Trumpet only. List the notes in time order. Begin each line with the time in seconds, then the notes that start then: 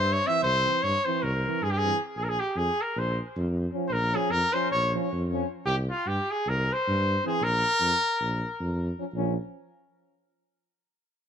Already playing: C5
0.12 C#5
0.27 E5
0.43 C5
0.83 C#5
1.05 C5
1.22 A#4
1.63 G#4
1.71 G4
1.77 G#4
2.17 G#4
2.23 A#4
2.29 G#4
2.40 G4
2.57 G#4
2.81 A#4
2.99 C5
3.88 C5
3.92 A#4
4.15 G#4
4.31 A#4
4.53 C5
4.71 C#5
5.65 G4
5.90 F4
6.07 G4
6.31 G#4
6.49 A#4
6.73 C5
7.26 G#4
7.43 A#4